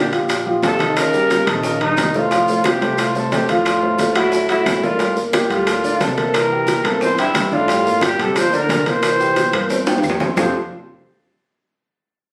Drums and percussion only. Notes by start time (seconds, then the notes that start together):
0.12 high conga, high timbale, maracas
0.28 high bongo, high conga, high timbale, claves, maracas
0.46 high bongo, high conga
0.63 high bongo, low bongo, high conga, high timbale, low timbale, maracas
0.79 high bongo, high conga, high timbale, maracas
0.96 high bongo, high conga, high timbale, claves, maracas
1.13 high bongo, high conga, maracas
1.30 high bongo, high conga, high timbale, low timbale, maracas
1.47 high conga, high timbale, claves, maracas
1.63 high bongo, high conga, maracas
1.81 high bongo, high conga, high timbale
1.97 high bongo, low bongo, high conga, high timbale, low timbale, claves, maracas
2.14 high bongo, high conga, maracas
2.31 high bongo, high conga, high timbale, maracas
2.48 high bongo, high conga, maracas
2.64 high bongo, high conga, high timbale, low timbale, claves, maracas
2.82 high conga, high timbale, maracas
2.98 high bongo, high conga, high timbale, claves, maracas
3.15 high bongo, high conga, maracas
3.32 high bongo, low bongo, high conga, high timbale, low timbale, maracas
3.49 high bongo, high conga, high timbale, maracas
3.65 high bongo, high conga, high timbale, claves, maracas
3.82 high bongo, high conga
3.98 high bongo, high conga, high timbale, low timbale, maracas
4.15 high conga, high timbale, claves, maracas
4.32 high bongo, high conga, maracas
4.49 high bongo, high conga, high timbale, maracas
4.66 high bongo, low bongo, high conga, high timbale, low timbale, claves, maracas
4.83 high bongo, high conga, maracas
4.99 high bongo, high conga, high timbale, maracas
5.16 high bongo, high conga, maracas
5.33 high bongo, high conga, high timbale, low timbale, claves, maracas
5.50 high conga, high timbale, maracas
5.67 high bongo, high conga, high timbale, claves, maracas
5.84 high bongo, high conga, maracas
6.00 high bongo, low bongo, high conga, high timbale, low timbale, maracas
6.17 high bongo, high conga, high timbale, maracas
6.34 high bongo, high conga, high timbale, claves, maracas
6.51 high bongo, high conga
6.67 high bongo, high conga, high timbale, low timbale, maracas
6.84 high conga, high timbale, claves, maracas
7.01 high bongo, high conga, maracas
7.18 high bongo, high conga, high timbale, maracas
7.35 high bongo, low bongo, high conga, high timbale, low timbale, claves, maracas
7.52 high bongo, high conga, maracas
7.68 high bongo, high conga, high timbale, maracas
7.85 high bongo, high conga, maracas
8.01 high bongo, high conga, high timbale, low timbale, claves, maracas
8.19 high conga, high timbale, maracas
8.36 high bongo, high conga, high timbale, claves, maracas
8.53 high bongo, high conga, maracas
8.69 high bongo, low bongo, high conga, high timbale, low timbale, maracas
8.86 high bongo, high conga, high timbale, maracas
9.03 high bongo, high conga, high timbale, claves, maracas
9.19 high bongo, high conga, maracas
9.36 high bongo, high conga, high timbale, low timbale, maracas
9.53 high conga, high timbale, claves, maracas
9.70 high bongo, high conga, maracas
9.86 high bongo, high conga, high timbale, maracas
9.98 high timbale
10.03 high conga, claves, maracas
10.10 low timbale
10.20 low bongo, high conga, low timbale, maracas
10.37 low bongo, low conga, low timbale, claves, maracas